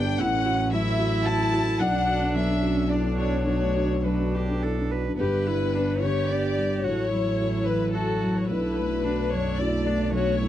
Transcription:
0.00 0.21 G1 medium
0.00 0.15 G2 medium
0.00 0.19 G3 medium
0.00 0.22 G3 medium
0.00 0.22 B3 medium
0.00 0.18 D4 medium
0.00 0.21 D4 medium
0.00 0.06 G4 medium
0.00 0.21 A4 medium
0.00 0.19 B4 medium
0.00 0.18 G5 loud
0.06 0.19 G4 medium
0.19 1.82 A1 medium
0.19 1.77 A2 medium
0.19 5.18 F#3 medium
0.19 0.75 C#4 medium
0.19 0.28 E4 medium
0.19 1.81 E4 medium
0.19 5.18 A4 medium
0.19 0.73 F#5 loud
0.33 0.54 E4 medium
0.45 0.53 E4 medium
0.45 0.67 F#4 medium
0.57 0.80 E4 medium
0.71 0.94 F#3 medium
0.71 0.80 E4 medium
0.71 1.83 E4 loud
0.71 1.25 E5 loud
0.85 1.07 E4 medium
0.98 1.07 E4 medium
0.98 1.21 F#4 medium
1.12 1.34 E4 medium
1.25 1.35 E4 medium
1.25 1.40 F#4 medium
1.25 1.80 A5 loud
1.39 1.61 E4 medium
1.52 1.60 E4 medium
1.52 1.75 F#4 medium
1.66 1.80 E4 medium
1.79 3.42 B1 medium
1.79 5.18 B1 medium
1.79 5.17 D4 medium
1.79 2.86 D4 medium
1.79 2.38 D4 medium
1.79 2.35 F#5 loud
1.94 2.16 D4 medium
2.07 2.30 F#4 medium
2.21 2.43 D4 medium
2.35 2.57 F#3 medium
2.35 2.62 B3 medium
2.35 2.89 E5 loud
2.49 2.71 D4 medium
2.62 2.92 C#4 medium
2.62 2.85 F#4 medium
2.76 2.98 D4 medium
2.90 3.47 D4 medium
2.90 4.02 D4 medium
2.90 3.04 E4 soft
2.90 3.19 D5 medium
3.17 3.41 F#4 medium
3.17 3.45 C#5 medium
3.33 3.56 D4 soft
3.47 5.13 B1 medium
3.47 3.98 F#4 medium
3.47 4.03 C#5 medium
3.62 3.84 A3 soft
3.76 3.99 F#4 medium
3.91 4.13 D4 soft
4.04 4.27 F#3 soft
4.04 4.96 D4 medium
4.04 4.36 F#4 medium
4.04 4.61 B4 medium
4.20 4.42 D4 soft
4.34 4.56 F#4 soft
4.34 4.65 G4 medium
4.48 4.70 D4 soft
4.63 4.77 E4 soft
4.63 4.93 A4 medium
4.79 5.00 D4 soft
4.91 5.13 F#4 soft
4.91 5.19 B4 medium
5.07 5.20 D4 soft
5.17 6.85 G1 medium
5.17 6.81 G2 medium
5.17 6.80 G3 medium
5.17 6.81 B3 medium
5.17 6.80 D4 medium
5.17 6.80 G4 medium
5.17 5.48 G4 medium
5.17 5.96 B4 loud
5.47 5.91 G3 medium
5.47 5.77 E4 medium
5.75 6.00 B3 medium
5.75 6.04 D4 medium
5.75 6.00 D4 medium
6.01 6.46 D3 medium
6.01 6.86 G4 medium
6.01 6.28 C#5 loud
6.29 6.54 B3 soft
6.29 6.54 D4 medium
6.29 6.84 D5 medium
6.58 6.85 G3 medium
6.83 8.50 A1 medium
6.83 8.46 A2 medium
6.83 8.45 F#3 medium
6.83 10.48 F#3 medium
6.83 8.49 E4 medium
6.83 7.11 F#4 medium
6.83 10.48 A4 medium
6.83 7.65 C#5 loud
7.12 7.57 F#3 medium
7.12 7.96 E4 medium
7.40 7.65 E4 soft
7.40 7.65 F#4 medium
7.66 8.12 E3 soft
7.66 7.94 B4 medium
7.93 8.20 E4 soft
7.93 8.47 F#4 medium
7.93 8.20 F#4 medium
7.93 8.34 A4 medium
8.23 8.50 F#3 medium
8.36 8.49 C#5 medium
8.48 10.48 B1 medium
8.48 10.09 B1 medium
8.48 10.48 A3 medium
8.48 10.48 D4 medium
8.48 9.06 E4 medium
8.48 9.29 B4 medium
8.79 9.21 A3 medium
9.04 9.59 D4 medium
9.04 9.29 D4 medium
9.04 9.30 F#4 medium
9.31 9.75 F#2 medium
9.31 9.58 C#5 loud
9.58 9.84 D4 soft
9.58 9.88 E4 medium
9.58 9.84 F#4 medium
9.58 10.13 D5 medium
9.86 10.29 A3 medium
9.86 10.13 D4 medium
10.12 10.48 B1 medium
10.12 10.40 F#4 medium
10.12 10.48 C#5 loud
10.41 10.48 F#2 medium
10.41 10.48 E4 medium

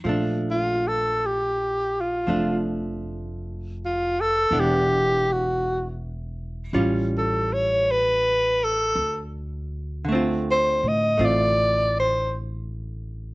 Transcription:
0.04 2.24 A#1 medium
0.04 2.26 F3 soft
0.04 2.27 A3 soft
0.09 2.28 D4 soft
0.51 0.89 F4 medium
0.88 1.28 A4 medium
1.26 2.03 G4 medium
2.01 2.59 F4 medium
2.27 4.47 F1 medium
2.27 4.50 F3 soft
2.27 4.51 A3 soft
2.27 4.52 D4 soft
3.85 4.22 F4 medium
4.21 4.61 A4 medium
4.51 6.69 E1 medium
4.51 6.74 E3 soft
4.51 6.74 B3 soft
4.51 6.74 D4 soft
4.60 5.34 G4 medium
5.32 5.91 F#4 medium
6.73 8.91 A1 medium
6.73 8.96 G3 soft
6.73 8.96 C#4 soft
6.73 8.96 F4 medium
7.18 7.55 A4 medium
7.53 7.93 C#5 medium
7.91 8.66 B4 medium
8.64 9.24 A4 medium
8.95 10.78 D2 medium
10.05 13.34 D3 soft
10.05 11.16 A3 soft
10.12 11.18 C4 medium
10.12 11.20 F4 soft
10.51 10.90 C5 medium
10.83 11.15 A2 medium
10.88 11.26 D#5 medium
11.17 13.34 A1 medium
11.17 13.34 A3 soft
11.17 13.34 C4 soft
11.17 13.34 F4 soft
11.25 11.95 D5 medium
12.00 12.35 C5 medium

